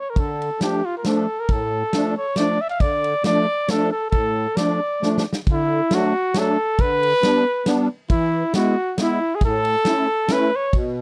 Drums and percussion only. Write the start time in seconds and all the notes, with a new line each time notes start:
0.16 kick, ride
0.42 ride
0.61 snare, ride
1.04 snare, ride
1.49 kick, ride
1.93 snare, ride
2.36 snare, ride
2.80 kick, ride
3.04 ride
3.24 snare, ride
3.68 snare, ride
4.12 kick, ride
4.57 snare, ride
5.03 snare
5.18 snare
5.33 snare
5.47 kick, ride
5.91 snare, ride
6.34 snare, ride
6.79 kick, ride
7.03 ride
7.23 snare, ride
7.66 snare, ride
8.10 kick, ride
8.54 snare, ride
8.98 snare, ride
9.41 kick, ride
9.65 ride
9.85 snare, ride
10.28 snare, ride
10.73 kick, ride